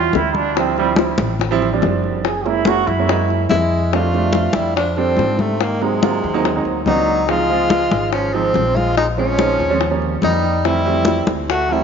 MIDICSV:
0, 0, Header, 1, 6, 480
1, 0, Start_track
1, 0, Tempo, 419874
1, 649, Time_signature, 4, 2, 24, 8
1, 13531, End_track
2, 0, Start_track
2, 0, Title_t, "Tenor saxophone"
2, 0, Program_c, 0, 66
2, 4003, Note_on_c, 0, 64, 97
2, 4508, Note_on_c, 0, 65, 96
2, 4526, Note_off_c, 0, 64, 0
2, 5199, Note_on_c, 0, 64, 82
2, 5216, Note_off_c, 0, 65, 0
2, 5436, Note_off_c, 0, 64, 0
2, 5443, Note_on_c, 0, 62, 88
2, 5687, Note_on_c, 0, 60, 84
2, 5705, Note_off_c, 0, 62, 0
2, 6181, Note_on_c, 0, 57, 78
2, 6198, Note_off_c, 0, 60, 0
2, 6421, Note_on_c, 0, 58, 81
2, 6438, Note_off_c, 0, 57, 0
2, 6652, Note_on_c, 0, 56, 82
2, 6669, Note_off_c, 0, 58, 0
2, 7611, Note_off_c, 0, 56, 0
2, 7851, Note_on_c, 0, 63, 98
2, 8346, Note_on_c, 0, 65, 112
2, 8363, Note_off_c, 0, 63, 0
2, 9288, Note_off_c, 0, 65, 0
2, 9295, Note_on_c, 0, 61, 84
2, 9533, Note_on_c, 0, 60, 90
2, 9550, Note_off_c, 0, 61, 0
2, 10020, Note_on_c, 0, 65, 92
2, 10038, Note_off_c, 0, 60, 0
2, 10252, Note_off_c, 0, 65, 0
2, 10259, Note_on_c, 0, 63, 92
2, 10366, Note_off_c, 0, 63, 0
2, 10506, Note_on_c, 0, 61, 99
2, 11414, Note_off_c, 0, 61, 0
2, 11708, Note_on_c, 0, 63, 92
2, 12184, Note_on_c, 0, 64, 103
2, 12201, Note_off_c, 0, 63, 0
2, 12899, Note_off_c, 0, 64, 0
2, 13148, Note_on_c, 0, 66, 95
2, 13405, Note_on_c, 0, 64, 83
2, 13422, Note_off_c, 0, 66, 0
2, 13531, Note_off_c, 0, 64, 0
2, 13531, End_track
3, 0, Start_track
3, 0, Title_t, "Grand piano"
3, 0, Program_c, 1, 0
3, 0, Note_on_c, 1, 55, 66
3, 0, Note_on_c, 1, 61, 66
3, 0, Note_on_c, 1, 64, 82
3, 0, Note_on_c, 1, 65, 73
3, 360, Note_off_c, 1, 61, 0
3, 361, Note_off_c, 1, 55, 0
3, 362, Note_off_c, 1, 65, 0
3, 364, Note_off_c, 1, 64, 0
3, 646, Note_on_c, 1, 53, 73
3, 649, Note_on_c, 1, 60, 64
3, 650, Note_on_c, 1, 55, 71
3, 654, Note_on_c, 1, 64, 79
3, 816, Note_off_c, 1, 53, 0
3, 817, Note_off_c, 1, 60, 0
3, 818, Note_off_c, 1, 55, 0
3, 819, Note_off_c, 1, 64, 0
3, 890, Note_on_c, 1, 53, 81
3, 894, Note_on_c, 1, 55, 74
3, 898, Note_on_c, 1, 60, 82
3, 901, Note_on_c, 1, 64, 93
3, 1477, Note_off_c, 1, 53, 0
3, 1479, Note_off_c, 1, 55, 0
3, 1481, Note_off_c, 1, 60, 0
3, 1482, Note_off_c, 1, 64, 0
3, 1723, Note_on_c, 1, 53, 109
3, 1729, Note_on_c, 1, 55, 93
3, 1729, Note_on_c, 1, 60, 95
3, 1736, Note_on_c, 1, 64, 123
3, 1893, Note_off_c, 1, 53, 0
3, 1896, Note_off_c, 1, 55, 0
3, 1896, Note_off_c, 1, 60, 0
3, 1900, Note_off_c, 1, 64, 0
3, 1973, Note_on_c, 1, 55, 80
3, 1977, Note_on_c, 1, 53, 90
3, 1977, Note_on_c, 1, 60, 82
3, 1982, Note_on_c, 1, 62, 94
3, 2558, Note_off_c, 1, 55, 0
3, 2559, Note_off_c, 1, 60, 0
3, 2560, Note_off_c, 1, 53, 0
3, 2562, Note_off_c, 1, 62, 0
3, 2803, Note_on_c, 1, 56, 74
3, 2807, Note_on_c, 1, 61, 68
3, 2812, Note_on_c, 1, 58, 68
3, 2814, Note_on_c, 1, 64, 81
3, 2973, Note_off_c, 1, 56, 0
3, 2974, Note_off_c, 1, 61, 0
3, 2977, Note_off_c, 1, 58, 0
3, 2978, Note_off_c, 1, 64, 0
3, 3044, Note_on_c, 1, 56, 75
3, 3049, Note_on_c, 1, 58, 69
3, 3052, Note_on_c, 1, 61, 67
3, 3058, Note_on_c, 1, 64, 81
3, 3297, Note_off_c, 1, 56, 0
3, 3299, Note_off_c, 1, 58, 0
3, 3301, Note_off_c, 1, 61, 0
3, 3304, Note_off_c, 1, 64, 0
3, 3417, Note_on_c, 1, 56, 77
3, 3422, Note_on_c, 1, 58, 68
3, 3425, Note_on_c, 1, 61, 70
3, 3426, Note_on_c, 1, 64, 77
3, 3495, Note_off_c, 1, 56, 0
3, 3498, Note_off_c, 1, 58, 0
3, 3499, Note_off_c, 1, 61, 0
3, 3500, Note_off_c, 1, 64, 0
3, 3522, Note_on_c, 1, 58, 69
3, 3523, Note_on_c, 1, 56, 73
3, 3528, Note_on_c, 1, 75, 80
3, 3529, Note_on_c, 1, 61, 74
3, 4196, Note_off_c, 1, 56, 0
3, 4196, Note_off_c, 1, 58, 0
3, 4199, Note_off_c, 1, 61, 0
3, 4199, Note_off_c, 1, 75, 0
3, 4493, Note_on_c, 1, 55, 73
3, 4496, Note_on_c, 1, 57, 68
3, 4499, Note_on_c, 1, 60, 68
3, 4504, Note_on_c, 1, 62, 87
3, 4657, Note_off_c, 1, 55, 0
3, 4659, Note_off_c, 1, 57, 0
3, 4660, Note_off_c, 1, 60, 0
3, 4663, Note_off_c, 1, 62, 0
3, 4727, Note_on_c, 1, 55, 73
3, 4729, Note_on_c, 1, 60, 66
3, 4733, Note_on_c, 1, 57, 74
3, 4737, Note_on_c, 1, 62, 83
3, 5399, Note_off_c, 1, 55, 0
3, 5399, Note_off_c, 1, 60, 0
3, 5402, Note_off_c, 1, 57, 0
3, 5404, Note_off_c, 1, 62, 0
3, 5681, Note_on_c, 1, 60, 75
3, 5681, Note_on_c, 1, 69, 76
3, 5682, Note_on_c, 1, 55, 77
3, 5691, Note_on_c, 1, 62, 90
3, 6357, Note_off_c, 1, 55, 0
3, 6357, Note_off_c, 1, 60, 0
3, 6357, Note_off_c, 1, 69, 0
3, 6361, Note_off_c, 1, 62, 0
3, 6647, Note_on_c, 1, 54, 80
3, 6650, Note_on_c, 1, 60, 68
3, 6652, Note_on_c, 1, 58, 65
3, 6656, Note_on_c, 1, 63, 82
3, 6815, Note_off_c, 1, 54, 0
3, 6817, Note_off_c, 1, 60, 0
3, 6818, Note_off_c, 1, 58, 0
3, 6820, Note_off_c, 1, 63, 0
3, 6889, Note_on_c, 1, 54, 84
3, 6891, Note_on_c, 1, 58, 71
3, 6895, Note_on_c, 1, 60, 67
3, 6897, Note_on_c, 1, 65, 83
3, 7141, Note_off_c, 1, 54, 0
3, 7142, Note_off_c, 1, 58, 0
3, 7144, Note_off_c, 1, 60, 0
3, 7145, Note_off_c, 1, 65, 0
3, 7247, Note_on_c, 1, 54, 96
3, 7247, Note_on_c, 1, 60, 83
3, 7251, Note_on_c, 1, 63, 107
3, 7252, Note_on_c, 1, 58, 87
3, 7416, Note_off_c, 1, 54, 0
3, 7416, Note_off_c, 1, 60, 0
3, 7418, Note_off_c, 1, 58, 0
3, 7418, Note_off_c, 1, 63, 0
3, 7497, Note_on_c, 1, 54, 85
3, 7497, Note_on_c, 1, 60, 73
3, 7500, Note_on_c, 1, 58, 71
3, 7507, Note_on_c, 1, 63, 90
3, 7745, Note_off_c, 1, 54, 0
3, 7745, Note_off_c, 1, 60, 0
3, 7747, Note_off_c, 1, 58, 0
3, 7750, Note_off_c, 1, 63, 0
3, 7857, Note_on_c, 1, 54, 77
3, 7858, Note_on_c, 1, 58, 78
3, 7867, Note_on_c, 1, 62, 89
3, 7869, Note_on_c, 1, 60, 75
3, 8190, Note_off_c, 1, 54, 0
3, 8190, Note_off_c, 1, 58, 0
3, 8195, Note_off_c, 1, 60, 0
3, 8195, Note_off_c, 1, 62, 0
3, 8328, Note_on_c, 1, 53, 82
3, 8331, Note_on_c, 1, 56, 68
3, 8335, Note_on_c, 1, 60, 68
3, 8338, Note_on_c, 1, 63, 87
3, 8497, Note_off_c, 1, 53, 0
3, 8498, Note_off_c, 1, 56, 0
3, 8500, Note_off_c, 1, 60, 0
3, 8502, Note_off_c, 1, 63, 0
3, 8564, Note_on_c, 1, 56, 75
3, 8567, Note_on_c, 1, 53, 82
3, 8572, Note_on_c, 1, 65, 87
3, 8573, Note_on_c, 1, 60, 69
3, 9240, Note_off_c, 1, 56, 0
3, 9241, Note_off_c, 1, 53, 0
3, 9243, Note_off_c, 1, 65, 0
3, 9244, Note_off_c, 1, 60, 0
3, 9532, Note_on_c, 1, 56, 72
3, 9534, Note_on_c, 1, 53, 78
3, 9538, Note_on_c, 1, 63, 86
3, 9539, Note_on_c, 1, 60, 69
3, 10204, Note_off_c, 1, 56, 0
3, 10205, Note_off_c, 1, 53, 0
3, 10207, Note_off_c, 1, 63, 0
3, 10208, Note_off_c, 1, 60, 0
3, 10488, Note_on_c, 1, 53, 72
3, 10491, Note_on_c, 1, 56, 72
3, 10496, Note_on_c, 1, 60, 67
3, 10496, Note_on_c, 1, 61, 87
3, 10658, Note_off_c, 1, 53, 0
3, 10660, Note_off_c, 1, 56, 0
3, 10662, Note_off_c, 1, 60, 0
3, 10662, Note_off_c, 1, 61, 0
3, 10738, Note_on_c, 1, 53, 73
3, 10738, Note_on_c, 1, 63, 82
3, 10739, Note_on_c, 1, 56, 76
3, 10744, Note_on_c, 1, 60, 72
3, 10987, Note_off_c, 1, 63, 0
3, 10988, Note_off_c, 1, 53, 0
3, 10988, Note_off_c, 1, 56, 0
3, 10990, Note_off_c, 1, 60, 0
3, 11090, Note_on_c, 1, 53, 94
3, 11092, Note_on_c, 1, 56, 86
3, 11092, Note_on_c, 1, 60, 81
3, 11094, Note_on_c, 1, 61, 98
3, 11211, Note_off_c, 1, 53, 0
3, 11212, Note_off_c, 1, 56, 0
3, 11212, Note_off_c, 1, 60, 0
3, 11214, Note_off_c, 1, 61, 0
3, 11324, Note_on_c, 1, 53, 79
3, 11331, Note_on_c, 1, 55, 71
3, 11331, Note_on_c, 1, 58, 69
3, 11336, Note_on_c, 1, 61, 89
3, 11581, Note_off_c, 1, 53, 0
3, 11584, Note_off_c, 1, 55, 0
3, 11584, Note_off_c, 1, 58, 0
3, 11587, Note_off_c, 1, 61, 0
3, 11697, Note_on_c, 1, 58, 71
3, 11698, Note_on_c, 1, 53, 78
3, 11698, Note_on_c, 1, 55, 68
3, 11702, Note_on_c, 1, 63, 87
3, 12031, Note_off_c, 1, 55, 0
3, 12031, Note_off_c, 1, 58, 0
3, 12032, Note_off_c, 1, 53, 0
3, 12034, Note_off_c, 1, 63, 0
3, 12170, Note_on_c, 1, 55, 69
3, 12171, Note_on_c, 1, 52, 76
3, 12173, Note_on_c, 1, 60, 86
3, 12177, Note_on_c, 1, 57, 67
3, 12340, Note_off_c, 1, 52, 0
3, 12340, Note_off_c, 1, 55, 0
3, 12341, Note_off_c, 1, 60, 0
3, 12343, Note_off_c, 1, 57, 0
3, 12403, Note_on_c, 1, 52, 76
3, 12405, Note_on_c, 1, 55, 65
3, 12410, Note_on_c, 1, 60, 88
3, 12411, Note_on_c, 1, 57, 70
3, 13081, Note_off_c, 1, 52, 0
3, 13082, Note_off_c, 1, 55, 0
3, 13084, Note_off_c, 1, 57, 0
3, 13084, Note_off_c, 1, 60, 0
3, 13377, Note_on_c, 1, 54, 75
3, 13380, Note_on_c, 1, 52, 73
3, 13385, Note_on_c, 1, 60, 86
3, 13389, Note_on_c, 1, 57, 73
3, 13531, Note_off_c, 1, 52, 0
3, 13531, Note_off_c, 1, 54, 0
3, 13531, Note_off_c, 1, 57, 0
3, 13531, Note_off_c, 1, 60, 0
3, 13531, End_track
4, 0, Start_track
4, 0, Title_t, "Trombone"
4, 0, Program_c, 2, 57
4, 0, Note_on_c, 2, 65, 98
4, 178, Note_on_c, 2, 64, 92
4, 195, Note_off_c, 2, 65, 0
4, 413, Note_on_c, 2, 62, 96
4, 430, Note_off_c, 2, 64, 0
4, 664, Note_on_c, 2, 60, 84
4, 681, Note_off_c, 2, 62, 0
4, 896, Note_off_c, 2, 60, 0
4, 902, Note_on_c, 2, 55, 93
4, 1042, Note_off_c, 2, 55, 0
4, 2579, Note_on_c, 2, 68, 87
4, 2820, Note_on_c, 2, 64, 100
4, 2837, Note_off_c, 2, 68, 0
4, 3060, Note_on_c, 2, 66, 111
4, 3077, Note_off_c, 2, 64, 0
4, 3285, Note_on_c, 2, 64, 96
4, 3303, Note_off_c, 2, 66, 0
4, 4005, Note_off_c, 2, 64, 0
4, 4014, Note_on_c, 2, 56, 81
4, 4500, Note_on_c, 2, 57, 78
4, 4518, Note_off_c, 2, 56, 0
4, 5205, Note_on_c, 2, 55, 67
4, 5222, Note_off_c, 2, 57, 0
4, 5434, Note_off_c, 2, 55, 0
4, 5441, Note_on_c, 2, 53, 70
4, 5687, Note_off_c, 2, 53, 0
4, 5687, Note_on_c, 2, 53, 75
4, 6157, Note_on_c, 2, 48, 67
4, 6174, Note_off_c, 2, 53, 0
4, 6419, Note_on_c, 2, 51, 66
4, 6436, Note_off_c, 2, 48, 0
4, 6657, Note_on_c, 2, 48, 80
4, 6675, Note_off_c, 2, 51, 0
4, 7614, Note_off_c, 2, 48, 0
4, 7849, Note_on_c, 2, 54, 83
4, 8323, Note_on_c, 2, 56, 86
4, 8340, Note_off_c, 2, 54, 0
4, 9287, Note_off_c, 2, 56, 0
4, 9293, Note_on_c, 2, 53, 79
4, 9528, Note_off_c, 2, 53, 0
4, 9528, Note_on_c, 2, 53, 76
4, 10006, Note_on_c, 2, 56, 78
4, 10023, Note_off_c, 2, 53, 0
4, 10249, Note_off_c, 2, 56, 0
4, 10266, Note_on_c, 2, 56, 71
4, 10371, Note_off_c, 2, 56, 0
4, 10487, Note_on_c, 2, 53, 82
4, 11404, Note_off_c, 2, 53, 0
4, 11694, Note_on_c, 2, 55, 81
4, 12184, Note_off_c, 2, 55, 0
4, 12184, Note_on_c, 2, 55, 82
4, 12899, Note_off_c, 2, 55, 0
4, 13150, Note_on_c, 2, 57, 81
4, 13377, Note_on_c, 2, 55, 76
4, 13394, Note_off_c, 2, 57, 0
4, 13531, Note_off_c, 2, 55, 0
4, 13531, End_track
5, 0, Start_track
5, 0, Title_t, "Upright bass"
5, 0, Program_c, 3, 32
5, 0, Note_on_c, 3, 40, 102
5, 123, Note_off_c, 3, 40, 0
5, 165, Note_on_c, 3, 38, 95
5, 1296, Note_off_c, 3, 38, 0
5, 1362, Note_on_c, 3, 33, 94
5, 2039, Note_off_c, 3, 33, 0
5, 2080, Note_on_c, 3, 30, 91
5, 3213, Note_off_c, 3, 30, 0
5, 3281, Note_on_c, 3, 42, 92
5, 3957, Note_off_c, 3, 42, 0
5, 4006, Note_on_c, 3, 41, 101
5, 5136, Note_off_c, 3, 41, 0
5, 5200, Note_on_c, 3, 41, 79
5, 5878, Note_off_c, 3, 41, 0
5, 5920, Note_on_c, 3, 44, 86
5, 7055, Note_off_c, 3, 44, 0
5, 7128, Note_on_c, 3, 39, 83
5, 7575, Note_off_c, 3, 39, 0
5, 7601, Note_on_c, 3, 38, 69
5, 7828, Note_off_c, 3, 38, 0
5, 7851, Note_on_c, 3, 37, 86
5, 8982, Note_off_c, 3, 37, 0
5, 9046, Note_on_c, 3, 32, 88
5, 9723, Note_off_c, 3, 32, 0
5, 9768, Note_on_c, 3, 34, 81
5, 10901, Note_off_c, 3, 34, 0
5, 10966, Note_on_c, 3, 39, 84
5, 11644, Note_off_c, 3, 39, 0
5, 11686, Note_on_c, 3, 41, 85
5, 12821, Note_off_c, 3, 41, 0
5, 12893, Note_on_c, 3, 38, 88
5, 13531, Note_off_c, 3, 38, 0
5, 13531, End_track
6, 0, Start_track
6, 0, Title_t, "Drums"
6, 151, Note_on_c, 9, 63, 86
6, 173, Note_on_c, 9, 60, 39
6, 173, Note_on_c, 9, 61, 92
6, 265, Note_off_c, 9, 63, 0
6, 287, Note_off_c, 9, 60, 0
6, 287, Note_off_c, 9, 61, 0
6, 396, Note_on_c, 9, 63, 74
6, 510, Note_off_c, 9, 63, 0
6, 629, Note_on_c, 9, 63, 35
6, 650, Note_on_c, 9, 60, 70
6, 744, Note_off_c, 9, 63, 0
6, 764, Note_off_c, 9, 60, 0
6, 874, Note_on_c, 9, 63, 34
6, 889, Note_on_c, 9, 60, 35
6, 989, Note_off_c, 9, 63, 0
6, 1004, Note_off_c, 9, 60, 0
6, 1102, Note_on_c, 9, 63, 103
6, 1128, Note_on_c, 9, 60, 61
6, 1217, Note_off_c, 9, 63, 0
6, 1242, Note_off_c, 9, 60, 0
6, 1347, Note_on_c, 9, 63, 99
6, 1347, Note_on_c, 9, 64, 85
6, 1375, Note_on_c, 9, 60, 35
6, 1462, Note_off_c, 9, 63, 0
6, 1462, Note_off_c, 9, 64, 0
6, 1490, Note_off_c, 9, 60, 0
6, 1595, Note_on_c, 9, 63, 34
6, 1595, Note_on_c, 9, 64, 67
6, 1615, Note_on_c, 9, 60, 63
6, 1710, Note_off_c, 9, 63, 0
6, 1710, Note_off_c, 9, 64, 0
6, 1729, Note_off_c, 9, 60, 0
6, 1841, Note_on_c, 9, 63, 33
6, 1853, Note_on_c, 9, 60, 38
6, 1955, Note_off_c, 9, 63, 0
6, 1967, Note_off_c, 9, 60, 0
6, 2082, Note_on_c, 9, 63, 90
6, 2090, Note_on_c, 9, 60, 37
6, 2090, Note_on_c, 9, 61, 91
6, 2196, Note_off_c, 9, 63, 0
6, 2205, Note_off_c, 9, 60, 0
6, 2205, Note_off_c, 9, 61, 0
6, 2326, Note_on_c, 9, 63, 35
6, 2441, Note_off_c, 9, 63, 0
6, 2563, Note_on_c, 9, 63, 37
6, 2570, Note_on_c, 9, 60, 70
6, 2677, Note_off_c, 9, 63, 0
6, 2684, Note_off_c, 9, 60, 0
6, 2806, Note_on_c, 9, 63, 36
6, 2813, Note_on_c, 9, 60, 35
6, 2920, Note_off_c, 9, 63, 0
6, 2927, Note_off_c, 9, 60, 0
6, 3031, Note_on_c, 9, 63, 105
6, 3057, Note_on_c, 9, 60, 59
6, 3145, Note_off_c, 9, 63, 0
6, 3171, Note_off_c, 9, 60, 0
6, 3283, Note_on_c, 9, 63, 36
6, 3296, Note_on_c, 9, 60, 37
6, 3397, Note_off_c, 9, 63, 0
6, 3410, Note_off_c, 9, 60, 0
6, 3521, Note_on_c, 9, 63, 32
6, 3536, Note_on_c, 9, 60, 68
6, 3636, Note_off_c, 9, 63, 0
6, 3650, Note_off_c, 9, 60, 0
6, 3755, Note_on_c, 9, 63, 32
6, 3776, Note_on_c, 9, 60, 37
6, 3870, Note_off_c, 9, 63, 0
6, 3890, Note_off_c, 9, 60, 0
6, 3995, Note_on_c, 9, 63, 84
6, 4015, Note_on_c, 9, 60, 37
6, 4015, Note_on_c, 9, 61, 96
6, 4109, Note_off_c, 9, 63, 0
6, 4129, Note_off_c, 9, 60, 0
6, 4129, Note_off_c, 9, 61, 0
6, 4473, Note_on_c, 9, 63, 31
6, 4495, Note_on_c, 9, 60, 65
6, 4588, Note_off_c, 9, 63, 0
6, 4610, Note_off_c, 9, 60, 0
6, 4721, Note_on_c, 9, 63, 33
6, 4735, Note_on_c, 9, 60, 30
6, 4835, Note_off_c, 9, 63, 0
6, 4850, Note_off_c, 9, 60, 0
6, 4946, Note_on_c, 9, 63, 89
6, 4971, Note_on_c, 9, 60, 55
6, 5060, Note_off_c, 9, 63, 0
6, 5085, Note_off_c, 9, 60, 0
6, 5179, Note_on_c, 9, 63, 95
6, 5209, Note_on_c, 9, 60, 35
6, 5294, Note_off_c, 9, 63, 0
6, 5323, Note_off_c, 9, 60, 0
6, 5430, Note_on_c, 9, 63, 31
6, 5454, Note_on_c, 9, 60, 60
6, 5544, Note_off_c, 9, 63, 0
6, 5568, Note_off_c, 9, 60, 0
6, 5672, Note_on_c, 9, 63, 32
6, 5787, Note_off_c, 9, 63, 0
6, 5905, Note_on_c, 9, 63, 80
6, 5934, Note_on_c, 9, 60, 34
6, 5934, Note_on_c, 9, 61, 77
6, 6019, Note_off_c, 9, 63, 0
6, 6048, Note_off_c, 9, 60, 0
6, 6048, Note_off_c, 9, 61, 0
6, 6160, Note_on_c, 9, 63, 74
6, 6175, Note_on_c, 9, 60, 32
6, 6274, Note_off_c, 9, 63, 0
6, 6290, Note_off_c, 9, 60, 0
6, 6391, Note_on_c, 9, 63, 33
6, 6409, Note_on_c, 9, 60, 67
6, 6505, Note_off_c, 9, 63, 0
6, 6523, Note_off_c, 9, 60, 0
6, 6647, Note_on_c, 9, 63, 33
6, 6651, Note_on_c, 9, 60, 31
6, 6762, Note_off_c, 9, 63, 0
6, 6765, Note_off_c, 9, 60, 0
6, 6890, Note_on_c, 9, 63, 87
6, 6892, Note_on_c, 9, 60, 55
6, 7004, Note_off_c, 9, 63, 0
6, 7006, Note_off_c, 9, 60, 0
6, 7135, Note_on_c, 9, 60, 33
6, 7249, Note_off_c, 9, 60, 0
6, 7365, Note_on_c, 9, 63, 30
6, 7376, Note_on_c, 9, 60, 64
6, 7480, Note_off_c, 9, 63, 0
6, 7490, Note_off_c, 9, 60, 0
6, 7605, Note_on_c, 9, 63, 31
6, 7719, Note_off_c, 9, 63, 0
6, 7841, Note_on_c, 9, 63, 79
6, 7859, Note_on_c, 9, 60, 35
6, 7859, Note_on_c, 9, 61, 86
6, 7955, Note_off_c, 9, 63, 0
6, 7974, Note_off_c, 9, 60, 0
6, 7974, Note_off_c, 9, 61, 0
6, 8082, Note_on_c, 9, 63, 33
6, 8095, Note_on_c, 9, 60, 33
6, 8196, Note_off_c, 9, 63, 0
6, 8209, Note_off_c, 9, 60, 0
6, 8324, Note_on_c, 9, 63, 32
6, 8331, Note_on_c, 9, 60, 64
6, 8438, Note_off_c, 9, 63, 0
6, 8446, Note_off_c, 9, 60, 0
6, 8567, Note_on_c, 9, 63, 33
6, 8574, Note_on_c, 9, 60, 33
6, 8681, Note_off_c, 9, 63, 0
6, 8688, Note_off_c, 9, 60, 0
6, 8804, Note_on_c, 9, 63, 94
6, 8813, Note_on_c, 9, 60, 58
6, 8918, Note_off_c, 9, 63, 0
6, 8927, Note_off_c, 9, 60, 0
6, 9048, Note_on_c, 9, 63, 95
6, 9049, Note_on_c, 9, 60, 35
6, 9162, Note_off_c, 9, 63, 0
6, 9164, Note_off_c, 9, 60, 0
6, 9290, Note_on_c, 9, 60, 60
6, 9294, Note_on_c, 9, 63, 30
6, 9404, Note_off_c, 9, 60, 0
6, 9409, Note_off_c, 9, 63, 0
6, 9532, Note_on_c, 9, 63, 31
6, 9646, Note_off_c, 9, 63, 0
6, 9766, Note_on_c, 9, 63, 81
6, 9779, Note_on_c, 9, 60, 33
6, 9779, Note_on_c, 9, 61, 81
6, 9880, Note_off_c, 9, 63, 0
6, 9893, Note_off_c, 9, 60, 0
6, 9893, Note_off_c, 9, 61, 0
6, 10018, Note_on_c, 9, 60, 30
6, 10022, Note_on_c, 9, 63, 75
6, 10132, Note_off_c, 9, 60, 0
6, 10136, Note_off_c, 9, 63, 0
6, 10250, Note_on_c, 9, 63, 33
6, 10260, Note_on_c, 9, 60, 67
6, 10364, Note_off_c, 9, 63, 0
6, 10374, Note_off_c, 9, 60, 0
6, 10482, Note_on_c, 9, 63, 34
6, 10497, Note_on_c, 9, 60, 35
6, 10596, Note_off_c, 9, 63, 0
6, 10612, Note_off_c, 9, 60, 0
6, 10731, Note_on_c, 9, 63, 93
6, 10737, Note_on_c, 9, 60, 54
6, 10845, Note_off_c, 9, 63, 0
6, 10851, Note_off_c, 9, 60, 0
6, 10975, Note_on_c, 9, 60, 34
6, 11089, Note_off_c, 9, 60, 0
6, 11206, Note_on_c, 9, 63, 28
6, 11211, Note_on_c, 9, 60, 59
6, 11320, Note_off_c, 9, 63, 0
6, 11326, Note_off_c, 9, 60, 0
6, 11454, Note_on_c, 9, 63, 34
6, 11568, Note_off_c, 9, 63, 0
6, 11682, Note_on_c, 9, 63, 83
6, 11697, Note_on_c, 9, 60, 32
6, 11697, Note_on_c, 9, 61, 86
6, 11796, Note_off_c, 9, 63, 0
6, 11811, Note_off_c, 9, 60, 0
6, 11811, Note_off_c, 9, 61, 0
6, 11926, Note_on_c, 9, 63, 32
6, 11939, Note_on_c, 9, 60, 32
6, 12040, Note_off_c, 9, 63, 0
6, 12053, Note_off_c, 9, 60, 0
6, 12169, Note_on_c, 9, 63, 32
6, 12176, Note_on_c, 9, 60, 63
6, 12283, Note_off_c, 9, 63, 0
6, 12291, Note_off_c, 9, 60, 0
6, 12409, Note_on_c, 9, 63, 32
6, 12419, Note_on_c, 9, 60, 34
6, 12523, Note_off_c, 9, 63, 0
6, 12534, Note_off_c, 9, 60, 0
6, 12631, Note_on_c, 9, 63, 101
6, 12665, Note_on_c, 9, 60, 56
6, 12745, Note_off_c, 9, 63, 0
6, 12779, Note_off_c, 9, 60, 0
6, 12883, Note_on_c, 9, 63, 95
6, 12902, Note_on_c, 9, 60, 37
6, 12997, Note_off_c, 9, 63, 0
6, 13017, Note_off_c, 9, 60, 0
6, 13127, Note_on_c, 9, 63, 31
6, 13144, Note_on_c, 9, 60, 68
6, 13242, Note_off_c, 9, 63, 0
6, 13258, Note_off_c, 9, 60, 0
6, 13366, Note_on_c, 9, 63, 31
6, 13480, Note_off_c, 9, 63, 0
6, 13531, End_track
0, 0, End_of_file